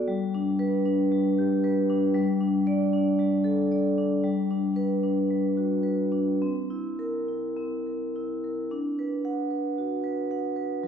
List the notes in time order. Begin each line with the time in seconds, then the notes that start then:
Already playing: B3 F#4 A4 D5
0.08 G3
0.34 D4
0.59 B4
0.85 D4
1.12 G3
1.38 G4
1.64 B4
1.90 D4
2.14 G3
2.41 D4
2.67 D5
2.93 D4
3.19 G3
3.44 A4
3.72 D5
3.98 D4
4.24 G3
4.51 D4
4.76 B4
5.03 D4
5.30 G3
5.57 F#4
5.83 B4
6.12 D4
6.42 C4
6.70 E4
6.99 A#4
7.28 E4
7.57 C4
7.87 A#4
8.16 E4
8.44 A#4
8.71 D4
8.99 B4
9.25 F#5
9.51 B4
9.78 F#4
10.04 B4
10.31 F#5
10.56 B4
10.83 F#3